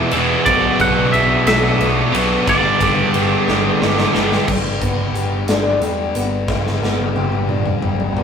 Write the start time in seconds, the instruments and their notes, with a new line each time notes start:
Already playing: distorted electric guitar E2 B2 E3 G#3 B3 E4
0.11 picked electric bass E1, distorted electric guitar B2 E3 B3 E4, ride
0.16 distorted electric guitar E2 E3 G#3
0.45 picked electric bass B1, distorted electric guitar B2 F#3 B3 D4, clean electric guitar D5, kick, ride
0.50 distorted electric guitar F#4 B4
0.80 picked electric bass B1, distorted electric guitar B3 D4 F#4 B4, clean electric guitar F#5, kick, ride
1.12 picked electric bass B1, clean electric guitar E5, ride
1.46 picked electric bass B1, distorted electric guitar B2 F#3 B3 D4 F#4 B4, clean electric guitar E5, snare, ride
1.80 picked electric bass B1, distorted electric guitar B3 D4 F#4 B4, ride
2.12 picked electric bass B1, distorted electric guitar F#3 B3 F#4 B4, ride
2.16 distorted electric guitar B2 B3 D4
2.46 picked electric bass G1, distorted electric guitar G2 D3 G3 B3 D4 G4, clean electric guitar D5, kick, ride
2.50 distorted electric guitar G3
2.80 picked electric bass G1, distorted electric guitar G3 B3 D4 G4, kick, ride
3.13 picked electric bass G1, ride
3.47 picked electric bass G1, distorted electric guitar G2 D3 G3 B3 D4 G4, snare
3.81 picked electric bass G1, distorted electric guitar G3 B3 D4 G4, snare
3.98 snare
4.13 picked electric bass G1, distorted electric guitar G2 D3 G3 D4 G4, snare
4.17 distorted electric guitar G3 B3
4.32 snare
4.47 picked electric bass G1, steel-string acoustic guitar G2, distorted electric guitar G2 D3, kick, crash
4.51 distorted electric guitar G3
4.81 picked electric bass G1, steel-string acoustic guitar B3, kick, closed hi-hat
5.13 picked electric bass G1, steel-string acoustic guitar G4, closed hi-hat
5.48 picked electric bass G1, steel-string acoustic guitar D4, snare, closed hi-hat
5.81 picked electric bass E2, steel-string acoustic guitar G3, closed hi-hat
6.15 picked electric bass G1, steel-string acoustic guitar B3, closed hi-hat
6.48 picked electric bass G1, distorted electric guitar G2 D3 G3, steel-string acoustic guitar G2, kick, snare
6.67 snare
6.82 picked electric bass G1, steel-string acoustic guitar B3, snare
7.00 high tom
7.14 picked electric bass G1, steel-string acoustic guitar G4, high tom
7.32 mid tom
7.48 steel-string acoustic guitar D4, mid tom
7.66 mid tom
7.81 picked electric bass G1, steel-string acoustic guitar G3, mid tom
8.00 floor tom
8.15 picked electric bass G1, steel-string acoustic guitar B3, floor tom